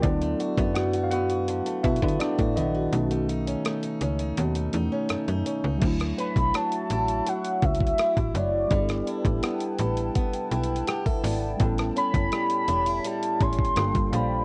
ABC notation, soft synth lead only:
X:1
M:4/4
L:1/8
Q:1/4=83
K:D
V:1 name="Soft synth lead"
z8 | z8 | z b a2 f e2 d- | d2 z6 |
z b3 a =c'2 b |]